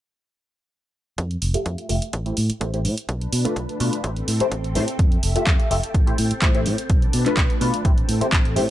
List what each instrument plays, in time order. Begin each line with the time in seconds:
1.18 fingered electric bass F2, kick, closed hi-hat
1.31 closed hi-hat
1.42 fingered electric bass F1, open hi-hat
1.54 analog polysynth A3 F4 G4 E5, muted fingered electric bass stroke, closed hi-hat
1.66 fingered electric bass F2, kick, closed hi-hat
1.78 closed hi-hat
1.89 fingered electric bass F1, analog polysynth A3 F4 G4 E5, open hi-hat
2.02 closed hi-hat
2.13 fingered electric bass A1, kick, closed hi-hat
2.25 analog polysynth A3 E4 G4 C5, closed hi-hat
2.37 fingered electric bass A2, open hi-hat
2.50 muted fingered electric bass stroke, closed hi-hat
2.60 fingered electric bass A1, analog polysynth A3 E4 G4 C5, kick, closed hi-hat
2.73 analog polysynth A3 E4 G4 C5, closed hi-hat
2.85 fingered electric bass A2, open hi-hat
2.98 closed hi-hat
3.09 fingered electric bass B1, string machine D4 B4 A5, kick, closed hi-hat
3.21 closed hi-hat
3.33 fingered electric bass B2, open hi-hat
3.45 analog polysynth A3 D4 F4 B4, muted fingered electric bass stroke, closed hi-hat
3.56 fingered electric bass B1, kick, closed hi-hat
3.69 closed hi-hat
3.80 fingered electric bass B2, analog polysynth A3 D4 F4 B4, open hi-hat
3.93 closed hi-hat
4.04 fingered electric bass A1, analog polysynth A3 E4 G4 C5, string machine C4 A4 G5, kick, closed hi-hat
4.16 closed hi-hat
4.28 fingered electric bass A2, open hi-hat
4.40 analog polysynth A3 E4 G4 C5, muted fingered electric bass stroke, closed hi-hat
4.51 fingered electric bass A1, kick, closed hi-hat
4.64 closed hi-hat
4.75 fingered electric bass A2, analog polysynth A3 E4 G4 C5, open hi-hat
4.88 closed hi-hat
4.99 fingered electric bass F2, string machine A4 E5 G5, kick, closed hi-hat
5.12 closed hi-hat
5.23 fingered electric bass F1, open hi-hat
5.35 analog polysynth A3 F4 G4 E5, muted fingered electric bass stroke, closed hi-hat
5.47 fingered electric bass F2, kick, clap, closed hi-hat
5.60 closed hi-hat
5.71 fingered electric bass F1, analog polysynth A3 F4 G4 E5, open hi-hat
5.83 closed hi-hat
5.94 fingered electric bass A1, string machine C4, kick, closed hi-hat
6.06 analog polysynth A3 E4 G4 C5, closed hi-hat
6.18 fingered electric bass A2, open hi-hat
6.31 muted fingered electric bass stroke, closed hi-hat
6.42 fingered electric bass A1, analog polysynth A3 E4 G4 C5, kick, clap, closed hi-hat
6.54 analog polysynth A3 E4 G4 C5, closed hi-hat
6.66 fingered electric bass A2, open hi-hat
6.78 closed hi-hat
6.89 fingered electric bass B1, string machine D4 B4 A5, kick, closed hi-hat
7.02 closed hi-hat
7.13 fingered electric bass B2, open hi-hat
7.26 analog polysynth A3 D4 F4 B4, muted fingered electric bass stroke, clap, closed hi-hat
7.37 fingered electric bass B1, kick, clap, closed hi-hat
7.50 closed hi-hat
7.61 fingered electric bass B2, analog polysynth A3 D4 F4 B4, open hi-hat
7.74 closed hi-hat
7.85 fingered electric bass A1, analog polysynth A3 E4 G4 C5, string machine C4 A4 G5, kick, closed hi-hat
7.98 closed hi-hat
8.09 fingered electric bass A2, open hi-hat
8.21 analog polysynth A3 E4 G4 C5, muted fingered electric bass stroke, closed hi-hat
8.32 fingered electric bass A1, kick, clap, closed hi-hat
8.45 closed hi-hat
8.56 fingered electric bass A2, analog polysynth A3 E4 G4 C5, open hi-hat